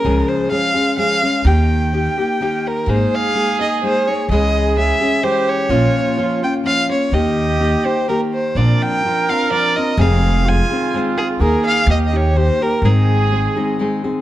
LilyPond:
<<
  \new Staff \with { instrumentName = "Violin" } { \time 3/4 \key aes \major \tempo 4 = 127 bes'8 c''8 f''4 f''4 | g''2~ g''8 bes'8 | c''8 f''4 ees''8 c''8 des''8 | ees''4 fes''4 c''8 des''8~ |
des''4. g''8 f''8 des''8 | ees''4. c''8 bes'8 c''8 | d''8 g''4 f''8 d''8 ees''8 | f''4 aes''4 r8 aes'8 |
bes'8 f''8 ees''16. ees''32 des''8 c''8 bes'8 | aes'2 r4 | }
  \new Staff \with { instrumentName = "Trumpet" } { \time 3/4 \key aes \major r2. | r2. | aes'2. | aes'2 g'4 |
f'2~ f'8 r8 | g'2~ g'8 r8 | bes'2. | aes'4 f'2 |
aes'4 g'4. r8 | aes'2~ aes'8 r8 | }
  \new Staff \with { instrumentName = "Nylon-string guitar" } { \time 3/4 \key aes \major <des f aes des' aes'>4 <f aes des' aes'>8 <aes des' aes'>8 <f aes des' aes'>8 <aes des'>8 | <ees bes ees' g'>4 <ees bes ees' g'>8 <bes ees' g'>8 <ees bes ees' g'>4 | <aes bes ees' aes'>4 <aes bes ees' aes'>8 <bes ees' aes'>8 <aes bes ees' aes'>8 <bes ees' aes'>8 | <des fes aes des' aes'>4 <fes aes des' aes'>8 <aes des' aes'>8 <fes aes des'>4 |
<bes, f bes des' f'>4 <f bes des' f'>8 <bes des' f'>8 <f bes des' f'>8 <bes des' f'>8 | <ees bes ees' g'>4 <ees bes ees' g'>8 <bes ees' g'>8 <ees bes ees' g'>4 | <bes, f c' d' f'>4 <f c' d' f'>8 <c' d' f'>8 <f c' d' f'>8 <c' d' f'>8 | <f, c ees aes c' aes'>4 <ees aes c' aes'>8 <ees aes c' aes'>8 <ees aes c' aes'>8 <ees aes c' aes'>8 |
<ees bes ees' aes'>4 <ees bes ees' g'>8 <bes ees' g'>8 <ees bes ees' g'>8 <bes ees' g'>8 | <aes, ees aes c' ees' aes'>4 <aes c' ees' aes'>8 <aes c' ees' aes'>8 <aes c' ees' aes'>8 <aes c' ees' aes'>8 | }
  \new Staff \with { instrumentName = "Upright bass" } { \clef bass \time 3/4 \key aes \major des,8 r2 r8 | ees,2 r4 | aes,,8 r2 r8 | des,2 r4 |
bes,,8 r2 r8 | ees,2 r4 | bes,,8 r2 r8 | f,,2 r4 |
ees,8 r8 ees,2 | aes,,2 r4 | }
>>